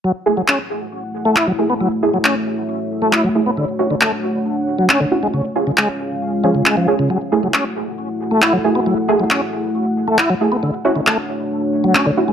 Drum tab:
CP |--x---x-|--x---x-|--x---x-|--x---x-|

CP |--x---x-|--x---x-|--x---x-|